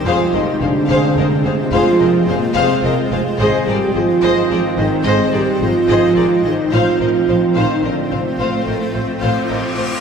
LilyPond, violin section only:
\new Staff \with { instrumentName = "Violin section" } { \time 6/8 \key f \dorian \tempo 4. = 72 <c'' f''>8 <bes' ees''>8 <c'' f''>8 <c'' f''>8 <bes' ees''>8 <c'' f''>8 | <c'' f''>8 <bes' ees''>8 <c'' f''>8 <c'' f''>8 <bes' ees''>8 <c'' f''>8 | <c'' ees''>8 <bes' d''>8 <c'' ees''>8 <c'' ees''>8 <bes' d''>8 <c'' ees''>8 | <c'' ees''>8 <bes' d''>8 <c'' ees''>8 <c'' ees''>8 <bes' d''>8 <c'' ees''>8 |
<c'' f''>8 <bes' ees''>8 <c'' f''>8 <c'' f''>8 <bes' ees''>8 <c'' f''>8 | <c'' f''>8 <bes' ees''>8 <c'' f''>8 <c'' f''>8 <bes' ees''>8 <c'' f''>8 | }